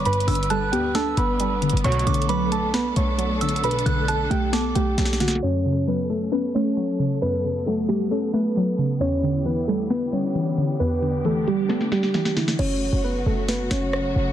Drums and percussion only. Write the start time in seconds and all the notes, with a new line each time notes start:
0.05 closed hi-hat
0.13 closed hi-hat
0.20 closed hi-hat
0.28 closed hi-hat, open hi-hat
0.35 closed hi-hat
0.43 closed hi-hat
0.50 closed hi-hat
0.73 closed hi-hat
0.95 snare, closed hi-hat
1.17 closed hi-hat
1.40 closed hi-hat
1.62 closed hi-hat
1.69 closed hi-hat
1.77 closed hi-hat
1.84 closed hi-hat
1.92 closed hi-hat
1.99 closed hi-hat
2.07 closed hi-hat
2.14 closed hi-hat
2.22 closed hi-hat
2.29 closed hi-hat
2.52 closed hi-hat
2.74 snare, closed hi-hat
2.96 closed hi-hat
3.19 closed hi-hat
3.41 closed hi-hat
3.49 closed hi-hat
3.56 closed hi-hat
3.64 closed hi-hat
3.71 closed hi-hat
3.79 closed hi-hat
3.86 closed hi-hat
4.08 closed hi-hat
4.31 closed hi-hat
4.53 snare, closed hi-hat
4.75 closed hi-hat
4.98 snare, closed hi-hat
5.05 snare
5.13 snare
5.20 snare, closed hi-hat
5.28 snare
5.35 snare
5.43 closed hi-hat
5.65 closed hi-hat
5.72 closed hi-hat
5.80 closed hi-hat
5.87 closed hi-hat
6.10 closed hi-hat
6.32 closed hi-hat
6.55 closed hi-hat
6.77 closed hi-hat
6.99 closed hi-hat
7.07 closed hi-hat
7.14 closed hi-hat
7.22 closed hi-hat
7.29 closed hi-hat
7.37 closed hi-hat
7.44 closed hi-hat
7.52 closed hi-hat
7.59 closed hi-hat
7.67 closed hi-hat
7.89 closed hi-hat
8.11 closed hi-hat
8.34 closed hi-hat
8.56 closed hi-hat
8.78 closed hi-hat
8.86 closed hi-hat
8.93 closed hi-hat
9.01 closed hi-hat
9.08 closed hi-hat
9.16 closed hi-hat
9.23 closed hi-hat
9.31 closed hi-hat
9.38 closed hi-hat
9.46 closed hi-hat
9.68 closed hi-hat
9.90 snare, closed hi-hat
10.13 closed hi-hat
10.35 closed hi-hat
10.58 closed hi-hat
10.65 closed hi-hat
10.72 closed hi-hat
10.80 closed hi-hat
10.88 closed hi-hat
10.95 closed hi-hat
11.03 closed hi-hat
11.25 closed hi-hat
11.48 closed hi-hat
11.70 snare, closed hi-hat
11.81 snare
11.92 snare, closed hi-hat
12.03 snare
12.14 snare, closed hi-hat
12.25 snare
12.37 snare, closed hi-hat
12.48 snare
12.59 crash
13.49 snare
13.71 snare
13.93 cross-stick